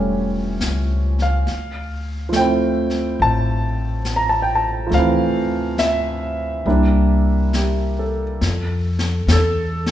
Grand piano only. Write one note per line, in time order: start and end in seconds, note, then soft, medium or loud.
0.00 1.50 E3 soft
0.00 1.45 F3 soft
0.00 1.49 G3 soft
0.00 1.48 A3 soft
0.00 1.49 C#4 soft
0.00 1.49 E5 medium
1.22 2.39 F5 medium
2.29 4.85 F3 soft
2.29 4.89 A3 soft
2.36 4.93 C4 soft
2.36 3.23 G5 medium
2.40 4.95 E4 soft
3.22 4.12 A5 medium
4.16 4.27 A#5 medium
4.29 4.40 A5 medium
4.42 4.52 G5 medium
4.55 4.65 A5 medium
4.87 6.63 F3 soft
4.87 6.65 A3 soft
4.94 6.67 C4 soft
4.94 5.75 F5 medium
4.98 6.69 E3 soft
5.79 7.50 E5 medium
6.66 8.42 G3 soft
6.66 8.42 A#3 soft
6.66 8.42 D4 soft
6.66 8.42 E4 soft
7.56 8.24 G4 soft
7.99 8.60 A4 soft
9.33 9.87 A4 medium